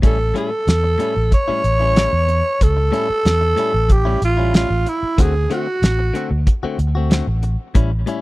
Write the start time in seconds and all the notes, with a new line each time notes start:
0.02 A1 A2 G3 C#4 E4 A4, kick, closed hi-hat
0.19 muted clean electric guitar stroke
0.34 A2 G3 C#4 E4 A4, closed hi-hat
0.51 muted clean electric guitar stroke
0.67 E2, snare, closed hi-hat
0.84 muted clean electric guitar stroke
0.98 A2 G3 C#4 E4, closed hi-hat
1.15 A1, muted clean electric guitar stroke
1.31 C#5, muted clean electric guitar stroke, kick, closed hi-hat
1.48 A2 G3 C#4 E4, muted fingered electric bass stroke
1.64 A1, closed hi-hat
1.80 G3 C#4 E4
1.95 A2 G3 C#4 E4, snare, closed hi-hat
2.12 E2, muted clean electric guitar stroke
2.28 muted clean electric guitar stroke, closed hi-hat
2.61 C#2 A4, kick, closed hi-hat
2.77 muted clean electric guitar stroke
2.92 A2 G3 C#4 E4, closed hi-hat
3.09 muted clean electric guitar stroke, muted fingered electric bass stroke
3.25 E2, snare, closed hi-hat
3.41 muted clean electric guitar stroke
3.56 A2 G3 C#4 E4, closed hi-hat
3.74 A1, muted clean electric guitar stroke
3.89 G4, muted clean electric guitar stroke, kick, closed hi-hat
4.05 A2 G3 C#4 E4
4.21 A1 F4, muted clean electric guitar stroke, closed hi-hat
4.37 G3 C#4 E4
4.53 A2 G3 C#4 E4 F4, snare, closed hi-hat
4.70 A1, muted clean electric guitar stroke
4.86 E4, muted clean electric guitar stroke, closed hi-hat
5.03 muted fingered electric bass stroke
5.18 D2 D3 A3 C4 F#4 G#4, kick, closed hi-hat
5.35 muted clean electric guitar stroke
5.50 D3 A3 C4 F#4, closed hi-hat
5.67 muted clean electric guitar stroke
5.82 A1, snare, closed hi-hat
5.99 muted clean electric guitar stroke
6.14 D3 A3 C4 F#4, closed hi-hat
6.31 D2, muted clean electric guitar stroke
6.47 muted clean electric guitar stroke, kick, closed hi-hat
6.63 D3 A3 C4 F#4, muted fingered electric bass stroke
6.79 D2, muted clean electric guitar stroke, closed hi-hat
6.95 A3 C4 F#4
7.10 D3 A3 C4 F#4, snare, closed hi-hat
7.27 A1
7.43 muted clean electric guitar stroke, closed hi-hat
7.75 A1 A2 G3 C#4 E4, kick, closed hi-hat
7.92 muted clean electric guitar stroke
8.06 A2 G3 C#4 E4, closed hi-hat